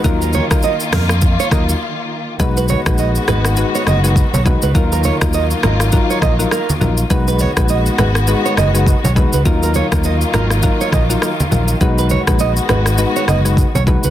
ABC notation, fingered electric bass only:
X:1
M:4/4
L:1/16
Q:"Swing 16ths" 1/4=102
K:Cblyd
V:1 name="Fingered electric bass" clef=bass
E,,3 z3 F,,4 E,,2 z4 | =B,,,3 _B,,,3 ^G,,,3 z ^F,,,3 =B,,,2 D,, | E,,3 E,,3 A,,,3 z B,,,2 z2 B,,,2 | =B,,,3 _B,,,3 ^G,,,3 z ^F,,,3 =B,,,2 D,, |
E,,3 E,,3 A,,,3 z B,,,2 z2 B,,,2 | =B,,,3 _B,,,3 ^G,,,3 z ^F,,,3 =B,,,2 D,, |]